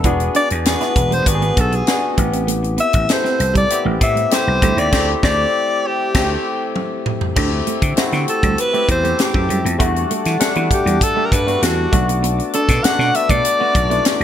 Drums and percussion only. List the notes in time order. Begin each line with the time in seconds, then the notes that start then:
0.04 kick, closed hi-hat
0.20 closed hi-hat
0.35 closed hi-hat
0.50 closed hi-hat
0.65 snare, closed hi-hat
0.81 snare, closed hi-hat
0.96 kick, closed hi-hat
1.12 closed hi-hat
1.26 kick, closed hi-hat
1.42 closed hi-hat
1.57 kick, closed hi-hat
1.72 closed hi-hat
1.87 snare, closed hi-hat
2.18 kick, closed hi-hat
2.33 closed hi-hat
2.48 closed hi-hat
2.64 closed hi-hat
2.78 closed hi-hat
2.93 kick, closed hi-hat
3.09 snare, closed hi-hat
3.25 snare
3.40 closed hi-hat
3.55 kick, closed hi-hat
3.70 closed hi-hat
4.01 kick, closed hi-hat
4.17 closed hi-hat
4.31 snare, closed hi-hat
4.62 kick, closed hi-hat
4.78 closed hi-hat
4.93 kick, snare, crash
5.23 kick, snare
6.15 kick, snare, crash
6.76 high tom
7.06 mid tom
7.21 floor tom
7.36 kick, crash
7.67 closed hi-hat
7.82 kick, closed hi-hat
7.97 snare, closed hi-hat
8.12 snare, closed hi-hat
8.28 closed hi-hat
8.43 kick, closed hi-hat
8.58 closed hi-hat
8.74 closed hi-hat
8.89 kick, closed hi-hat
9.05 closed hi-hat
9.19 snare, closed hi-hat
9.34 kick
9.50 closed hi-hat
9.66 closed hi-hat
9.80 kick, closed hi-hat
9.96 closed hi-hat
10.11 closed hi-hat
10.25 snare, closed hi-hat
10.40 snare, closed hi-hat
10.55 closed hi-hat
10.71 kick, closed hi-hat
10.87 closed hi-hat
11.01 kick, closed hi-hat
11.32 kick, closed hi-hat
11.48 closed hi-hat
11.63 snare, closed hi-hat
11.93 kick, closed hi-hat
12.09 closed hi-hat
12.24 closed hi-hat
12.40 closed hi-hat
12.53 closed hi-hat
12.69 kick, snare, closed hi-hat
12.84 snare, closed hi-hat
13.00 snare
13.15 closed hi-hat
13.29 kick, closed hi-hat
13.45 closed hi-hat
13.75 kick, closed hi-hat
13.91 closed hi-hat
14.05 snare, closed hi-hat